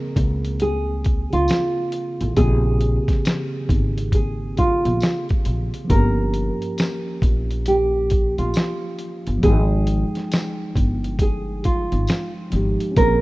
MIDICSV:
0, 0, Header, 1, 5, 480
1, 0, Start_track
1, 0, Key_signature, -4, "minor"
1, 0, Tempo, 882353
1, 1290, Time_signature, 4, 2, 24, 8
1, 7188, End_track
2, 0, Start_track
2, 0, Title_t, "Nylon-string guitar"
2, 0, Program_c, 0, 24
2, 0, Note_on_c, 0, 70, 97
2, 309, Note_off_c, 0, 70, 0
2, 336, Note_on_c, 0, 68, 83
2, 701, Note_off_c, 0, 68, 0
2, 724, Note_on_c, 0, 65, 78
2, 1271, Note_off_c, 0, 65, 0
2, 1288, Note_on_c, 0, 68, 106
2, 2227, Note_off_c, 0, 68, 0
2, 2256, Note_on_c, 0, 68, 75
2, 2471, Note_off_c, 0, 68, 0
2, 2494, Note_on_c, 0, 65, 89
2, 2860, Note_off_c, 0, 65, 0
2, 3212, Note_on_c, 0, 70, 103
2, 4150, Note_off_c, 0, 70, 0
2, 4177, Note_on_c, 0, 67, 84
2, 4542, Note_off_c, 0, 67, 0
2, 4563, Note_on_c, 0, 65, 74
2, 5110, Note_off_c, 0, 65, 0
2, 5134, Note_on_c, 0, 68, 106
2, 6070, Note_off_c, 0, 68, 0
2, 6102, Note_on_c, 0, 68, 74
2, 6314, Note_off_c, 0, 68, 0
2, 6338, Note_on_c, 0, 65, 82
2, 6702, Note_off_c, 0, 65, 0
2, 7058, Note_on_c, 0, 70, 108
2, 7188, Note_off_c, 0, 70, 0
2, 7188, End_track
3, 0, Start_track
3, 0, Title_t, "Tine electric piano"
3, 0, Program_c, 1, 4
3, 0, Control_c, 1, 64, 127
3, 0, Note_on_c, 1, 49, 68
3, 0, Note_on_c, 1, 58, 63
3, 0, Note_on_c, 1, 60, 64
3, 0, Note_on_c, 1, 68, 78
3, 1252, Note_off_c, 1, 49, 0
3, 1262, Note_off_c, 1, 58, 0
3, 1266, Note_on_c, 1, 49, 65
3, 1272, Note_off_c, 1, 60, 0
3, 1281, Note_off_c, 1, 68, 0
3, 1284, Note_on_c, 1, 58, 59
3, 1304, Note_on_c, 1, 60, 57
3, 1326, Note_on_c, 1, 67, 59
3, 1352, Note_off_c, 1, 67, 0
3, 1360, Note_on_c, 1, 68, 72
3, 3176, Note_off_c, 1, 49, 0
3, 3180, Note_on_c, 1, 53, 60
3, 3186, Note_off_c, 1, 58, 0
3, 3195, Note_off_c, 1, 60, 0
3, 3198, Note_on_c, 1, 58, 62
3, 3217, Control_c, 1, 64, 0
3, 3220, Note_on_c, 1, 61, 59
3, 3224, Note_off_c, 1, 68, 0
3, 3237, Note_on_c, 1, 67, 70
3, 3322, Control_c, 1, 64, 127
3, 5093, Note_off_c, 1, 53, 0
3, 5101, Note_on_c, 1, 53, 67
3, 5102, Note_off_c, 1, 58, 0
3, 5113, Note_off_c, 1, 61, 0
3, 5121, Note_on_c, 1, 56, 64
3, 5122, Note_off_c, 1, 67, 0
3, 5136, Control_c, 1, 64, 0
3, 5143, Note_on_c, 1, 63, 59
3, 5160, Note_on_c, 1, 79, 69
3, 5225, Control_c, 1, 64, 127
3, 6774, Note_off_c, 1, 53, 0
3, 6784, Note_off_c, 1, 56, 0
3, 6795, Note_off_c, 1, 63, 0
3, 6803, Note_off_c, 1, 79, 0
3, 6803, Note_on_c, 1, 53, 62
3, 6813, Note_on_c, 1, 56, 55
3, 6823, Note_on_c, 1, 63, 51
3, 6832, Note_on_c, 1, 67, 63
3, 7026, Note_on_c, 1, 61, 67
3, 7046, Note_off_c, 1, 53, 0
3, 7046, Note_on_c, 1, 58, 66
3, 7052, Note_off_c, 1, 56, 0
3, 7056, Note_off_c, 1, 63, 0
3, 7058, Control_c, 1, 64, 0
3, 7061, Note_off_c, 1, 67, 0
3, 7066, Note_on_c, 1, 60, 58
3, 7086, Note_on_c, 1, 68, 75
3, 7147, Control_c, 1, 64, 127
3, 7188, Note_off_c, 1, 58, 0
3, 7188, Note_off_c, 1, 60, 0
3, 7188, Note_off_c, 1, 61, 0
3, 7188, Note_off_c, 1, 68, 0
3, 7188, End_track
4, 0, Start_track
4, 0, Title_t, "Upright bass"
4, 0, Program_c, 2, 32
4, 89, Note_on_c, 2, 37, 99
4, 698, Note_off_c, 2, 37, 0
4, 724, Note_on_c, 2, 37, 85
4, 796, Note_off_c, 2, 37, 0
4, 1202, Note_on_c, 2, 33, 90
4, 1275, Note_off_c, 2, 33, 0
4, 1291, Note_on_c, 2, 34, 118
4, 1611, Note_off_c, 2, 34, 0
4, 2009, Note_on_c, 2, 32, 95
4, 2617, Note_off_c, 2, 32, 0
4, 2640, Note_on_c, 2, 34, 98
4, 2714, Note_off_c, 2, 34, 0
4, 2970, Note_on_c, 2, 34, 82
4, 3093, Note_off_c, 2, 34, 0
4, 3209, Note_on_c, 2, 31, 109
4, 3531, Note_off_c, 2, 31, 0
4, 3928, Note_on_c, 2, 34, 86
4, 4537, Note_off_c, 2, 34, 0
4, 4562, Note_on_c, 2, 34, 84
4, 4635, Note_off_c, 2, 34, 0
4, 5045, Note_on_c, 2, 31, 88
4, 5117, Note_off_c, 2, 31, 0
4, 5132, Note_on_c, 2, 32, 117
4, 5452, Note_off_c, 2, 32, 0
4, 5853, Note_on_c, 2, 31, 91
4, 6460, Note_off_c, 2, 31, 0
4, 6485, Note_on_c, 2, 32, 93
4, 6557, Note_off_c, 2, 32, 0
4, 6814, Note_on_c, 2, 32, 94
4, 6936, Note_off_c, 2, 32, 0
4, 7054, Note_on_c, 2, 34, 104
4, 7188, Note_off_c, 2, 34, 0
4, 7188, End_track
5, 0, Start_track
5, 0, Title_t, "Drums"
5, 88, Note_on_c, 9, 36, 91
5, 90, Note_on_c, 9, 42, 67
5, 142, Note_off_c, 9, 36, 0
5, 144, Note_off_c, 9, 42, 0
5, 243, Note_on_c, 9, 42, 52
5, 297, Note_off_c, 9, 42, 0
5, 325, Note_on_c, 9, 42, 75
5, 379, Note_off_c, 9, 42, 0
5, 568, Note_on_c, 9, 42, 61
5, 576, Note_on_c, 9, 36, 87
5, 623, Note_off_c, 9, 42, 0
5, 630, Note_off_c, 9, 36, 0
5, 722, Note_on_c, 9, 42, 50
5, 776, Note_off_c, 9, 42, 0
5, 805, Note_on_c, 9, 54, 69
5, 813, Note_on_c, 9, 42, 76
5, 820, Note_on_c, 9, 38, 95
5, 859, Note_off_c, 9, 54, 0
5, 868, Note_off_c, 9, 42, 0
5, 874, Note_off_c, 9, 38, 0
5, 1045, Note_on_c, 9, 42, 73
5, 1100, Note_off_c, 9, 42, 0
5, 1200, Note_on_c, 9, 42, 53
5, 1255, Note_off_c, 9, 42, 0
5, 1287, Note_on_c, 9, 42, 81
5, 1289, Note_on_c, 9, 36, 123
5, 1342, Note_off_c, 9, 42, 0
5, 1343, Note_off_c, 9, 36, 0
5, 1527, Note_on_c, 9, 42, 64
5, 1581, Note_off_c, 9, 42, 0
5, 1676, Note_on_c, 9, 36, 93
5, 1679, Note_on_c, 9, 42, 46
5, 1688, Note_on_c, 9, 38, 34
5, 1731, Note_off_c, 9, 36, 0
5, 1734, Note_off_c, 9, 42, 0
5, 1743, Note_off_c, 9, 38, 0
5, 1769, Note_on_c, 9, 42, 82
5, 1771, Note_on_c, 9, 54, 72
5, 1779, Note_on_c, 9, 38, 108
5, 1823, Note_off_c, 9, 42, 0
5, 1825, Note_off_c, 9, 54, 0
5, 1834, Note_off_c, 9, 38, 0
5, 2008, Note_on_c, 9, 36, 98
5, 2014, Note_on_c, 9, 42, 68
5, 2062, Note_off_c, 9, 36, 0
5, 2069, Note_off_c, 9, 42, 0
5, 2163, Note_on_c, 9, 42, 57
5, 2217, Note_off_c, 9, 42, 0
5, 2242, Note_on_c, 9, 36, 83
5, 2245, Note_on_c, 9, 42, 86
5, 2297, Note_off_c, 9, 36, 0
5, 2299, Note_off_c, 9, 42, 0
5, 2488, Note_on_c, 9, 42, 63
5, 2495, Note_on_c, 9, 36, 85
5, 2542, Note_off_c, 9, 42, 0
5, 2549, Note_off_c, 9, 36, 0
5, 2640, Note_on_c, 9, 42, 55
5, 2695, Note_off_c, 9, 42, 0
5, 2723, Note_on_c, 9, 54, 66
5, 2732, Note_on_c, 9, 42, 69
5, 2738, Note_on_c, 9, 38, 101
5, 2777, Note_off_c, 9, 54, 0
5, 2786, Note_off_c, 9, 42, 0
5, 2793, Note_off_c, 9, 38, 0
5, 2879, Note_on_c, 9, 42, 37
5, 2886, Note_on_c, 9, 36, 90
5, 2933, Note_off_c, 9, 42, 0
5, 2940, Note_off_c, 9, 36, 0
5, 2965, Note_on_c, 9, 42, 61
5, 3020, Note_off_c, 9, 42, 0
5, 3121, Note_on_c, 9, 42, 53
5, 3176, Note_off_c, 9, 42, 0
5, 3208, Note_on_c, 9, 36, 109
5, 3209, Note_on_c, 9, 42, 87
5, 3263, Note_off_c, 9, 36, 0
5, 3263, Note_off_c, 9, 42, 0
5, 3447, Note_on_c, 9, 42, 65
5, 3502, Note_off_c, 9, 42, 0
5, 3600, Note_on_c, 9, 42, 45
5, 3655, Note_off_c, 9, 42, 0
5, 3688, Note_on_c, 9, 42, 73
5, 3691, Note_on_c, 9, 54, 65
5, 3698, Note_on_c, 9, 38, 98
5, 3742, Note_off_c, 9, 42, 0
5, 3746, Note_off_c, 9, 54, 0
5, 3753, Note_off_c, 9, 38, 0
5, 3927, Note_on_c, 9, 36, 87
5, 3933, Note_on_c, 9, 42, 64
5, 3982, Note_off_c, 9, 36, 0
5, 3988, Note_off_c, 9, 42, 0
5, 4083, Note_on_c, 9, 42, 52
5, 4138, Note_off_c, 9, 42, 0
5, 4165, Note_on_c, 9, 42, 87
5, 4220, Note_off_c, 9, 42, 0
5, 4407, Note_on_c, 9, 42, 65
5, 4415, Note_on_c, 9, 36, 87
5, 4461, Note_off_c, 9, 42, 0
5, 4469, Note_off_c, 9, 36, 0
5, 4561, Note_on_c, 9, 42, 50
5, 4615, Note_off_c, 9, 42, 0
5, 4645, Note_on_c, 9, 54, 62
5, 4655, Note_on_c, 9, 42, 67
5, 4662, Note_on_c, 9, 38, 110
5, 4699, Note_off_c, 9, 54, 0
5, 4710, Note_off_c, 9, 42, 0
5, 4716, Note_off_c, 9, 38, 0
5, 4888, Note_on_c, 9, 42, 61
5, 4943, Note_off_c, 9, 42, 0
5, 5041, Note_on_c, 9, 42, 52
5, 5095, Note_off_c, 9, 42, 0
5, 5130, Note_on_c, 9, 36, 110
5, 5130, Note_on_c, 9, 42, 74
5, 5184, Note_off_c, 9, 42, 0
5, 5185, Note_off_c, 9, 36, 0
5, 5368, Note_on_c, 9, 42, 70
5, 5423, Note_off_c, 9, 42, 0
5, 5523, Note_on_c, 9, 42, 46
5, 5532, Note_on_c, 9, 38, 35
5, 5577, Note_off_c, 9, 42, 0
5, 5586, Note_off_c, 9, 38, 0
5, 5612, Note_on_c, 9, 42, 81
5, 5612, Note_on_c, 9, 54, 62
5, 5622, Note_on_c, 9, 38, 109
5, 5666, Note_off_c, 9, 42, 0
5, 5667, Note_off_c, 9, 54, 0
5, 5677, Note_off_c, 9, 38, 0
5, 5851, Note_on_c, 9, 36, 95
5, 5857, Note_on_c, 9, 42, 70
5, 5905, Note_off_c, 9, 36, 0
5, 5912, Note_off_c, 9, 42, 0
5, 6007, Note_on_c, 9, 42, 50
5, 6062, Note_off_c, 9, 42, 0
5, 6086, Note_on_c, 9, 36, 86
5, 6089, Note_on_c, 9, 42, 78
5, 6141, Note_off_c, 9, 36, 0
5, 6143, Note_off_c, 9, 42, 0
5, 6333, Note_on_c, 9, 42, 67
5, 6339, Note_on_c, 9, 36, 87
5, 6387, Note_off_c, 9, 42, 0
5, 6393, Note_off_c, 9, 36, 0
5, 6484, Note_on_c, 9, 42, 48
5, 6539, Note_off_c, 9, 42, 0
5, 6569, Note_on_c, 9, 54, 63
5, 6574, Note_on_c, 9, 42, 74
5, 6581, Note_on_c, 9, 38, 95
5, 6623, Note_off_c, 9, 54, 0
5, 6629, Note_off_c, 9, 42, 0
5, 6635, Note_off_c, 9, 38, 0
5, 6810, Note_on_c, 9, 42, 66
5, 6864, Note_off_c, 9, 42, 0
5, 6965, Note_on_c, 9, 42, 53
5, 7020, Note_off_c, 9, 42, 0
5, 7053, Note_on_c, 9, 36, 119
5, 7053, Note_on_c, 9, 42, 82
5, 7107, Note_off_c, 9, 42, 0
5, 7108, Note_off_c, 9, 36, 0
5, 7188, End_track
0, 0, End_of_file